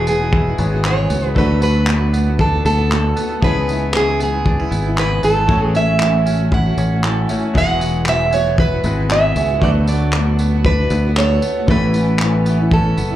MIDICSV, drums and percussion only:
0, 0, Header, 1, 2, 480
1, 0, Start_track
1, 0, Key_signature, 3, "major"
1, 0, Tempo, 515907
1, 1270, Time_signature, 4, 2, 24, 8
1, 12242, End_track
2, 0, Start_track
2, 0, Title_t, "Drums"
2, 65, Note_on_c, 9, 54, 74
2, 158, Note_off_c, 9, 54, 0
2, 304, Note_on_c, 9, 36, 123
2, 397, Note_off_c, 9, 36, 0
2, 543, Note_on_c, 9, 54, 62
2, 636, Note_off_c, 9, 54, 0
2, 788, Note_on_c, 9, 39, 118
2, 881, Note_off_c, 9, 39, 0
2, 1024, Note_on_c, 9, 54, 73
2, 1117, Note_off_c, 9, 54, 0
2, 1265, Note_on_c, 9, 36, 114
2, 1358, Note_off_c, 9, 36, 0
2, 1506, Note_on_c, 9, 54, 65
2, 1599, Note_off_c, 9, 54, 0
2, 1740, Note_on_c, 9, 39, 120
2, 1833, Note_off_c, 9, 39, 0
2, 1989, Note_on_c, 9, 54, 73
2, 2082, Note_off_c, 9, 54, 0
2, 2226, Note_on_c, 9, 36, 127
2, 2319, Note_off_c, 9, 36, 0
2, 2470, Note_on_c, 9, 54, 61
2, 2563, Note_off_c, 9, 54, 0
2, 2716, Note_on_c, 9, 39, 119
2, 2809, Note_off_c, 9, 39, 0
2, 2948, Note_on_c, 9, 54, 73
2, 3041, Note_off_c, 9, 54, 0
2, 3186, Note_on_c, 9, 36, 113
2, 3279, Note_off_c, 9, 36, 0
2, 3432, Note_on_c, 9, 54, 65
2, 3525, Note_off_c, 9, 54, 0
2, 3662, Note_on_c, 9, 39, 120
2, 3755, Note_off_c, 9, 39, 0
2, 3912, Note_on_c, 9, 54, 70
2, 4005, Note_off_c, 9, 54, 0
2, 4147, Note_on_c, 9, 36, 120
2, 4240, Note_off_c, 9, 36, 0
2, 4392, Note_on_c, 9, 54, 64
2, 4485, Note_off_c, 9, 54, 0
2, 4633, Note_on_c, 9, 39, 118
2, 4727, Note_off_c, 9, 39, 0
2, 4867, Note_on_c, 9, 54, 74
2, 4960, Note_off_c, 9, 54, 0
2, 5106, Note_on_c, 9, 36, 123
2, 5199, Note_off_c, 9, 36, 0
2, 5349, Note_on_c, 9, 54, 67
2, 5442, Note_off_c, 9, 54, 0
2, 5582, Note_on_c, 9, 39, 121
2, 5675, Note_off_c, 9, 39, 0
2, 5829, Note_on_c, 9, 54, 76
2, 5922, Note_off_c, 9, 54, 0
2, 6065, Note_on_c, 9, 36, 125
2, 6158, Note_off_c, 9, 36, 0
2, 6305, Note_on_c, 9, 54, 61
2, 6398, Note_off_c, 9, 54, 0
2, 6550, Note_on_c, 9, 39, 126
2, 6643, Note_off_c, 9, 39, 0
2, 6783, Note_on_c, 9, 54, 68
2, 6876, Note_off_c, 9, 54, 0
2, 7025, Note_on_c, 9, 36, 115
2, 7118, Note_off_c, 9, 36, 0
2, 7269, Note_on_c, 9, 54, 66
2, 7362, Note_off_c, 9, 54, 0
2, 7499, Note_on_c, 9, 39, 121
2, 7592, Note_off_c, 9, 39, 0
2, 7746, Note_on_c, 9, 54, 77
2, 7839, Note_off_c, 9, 54, 0
2, 7985, Note_on_c, 9, 36, 123
2, 8078, Note_off_c, 9, 36, 0
2, 8222, Note_on_c, 9, 54, 65
2, 8315, Note_off_c, 9, 54, 0
2, 8473, Note_on_c, 9, 39, 121
2, 8566, Note_off_c, 9, 39, 0
2, 8707, Note_on_c, 9, 54, 72
2, 8800, Note_off_c, 9, 54, 0
2, 8947, Note_on_c, 9, 36, 116
2, 9040, Note_off_c, 9, 36, 0
2, 9188, Note_on_c, 9, 54, 67
2, 9281, Note_off_c, 9, 54, 0
2, 9420, Note_on_c, 9, 39, 120
2, 9513, Note_off_c, 9, 39, 0
2, 9664, Note_on_c, 9, 54, 72
2, 9757, Note_off_c, 9, 54, 0
2, 9905, Note_on_c, 9, 36, 122
2, 9998, Note_off_c, 9, 36, 0
2, 10143, Note_on_c, 9, 54, 66
2, 10236, Note_off_c, 9, 54, 0
2, 10391, Note_on_c, 9, 39, 124
2, 10484, Note_off_c, 9, 39, 0
2, 10628, Note_on_c, 9, 54, 71
2, 10721, Note_off_c, 9, 54, 0
2, 10869, Note_on_c, 9, 36, 114
2, 10962, Note_off_c, 9, 36, 0
2, 11108, Note_on_c, 9, 54, 67
2, 11201, Note_off_c, 9, 54, 0
2, 11344, Note_on_c, 9, 39, 118
2, 11437, Note_off_c, 9, 39, 0
2, 11593, Note_on_c, 9, 54, 73
2, 11686, Note_off_c, 9, 54, 0
2, 11829, Note_on_c, 9, 36, 124
2, 11923, Note_off_c, 9, 36, 0
2, 12073, Note_on_c, 9, 54, 62
2, 12166, Note_off_c, 9, 54, 0
2, 12242, End_track
0, 0, End_of_file